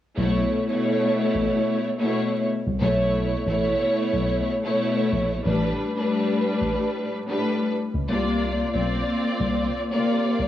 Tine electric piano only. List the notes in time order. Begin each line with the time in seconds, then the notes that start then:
0.18 B1
1.35 A1
2.67 C2
2.82 B1
3.47 A1
4.13 B1
5.12 A#1
5.45 A1
6.62 A1
7.94 C#2
8.09 C2
8.75 B1
9.41 C2
10.40 C2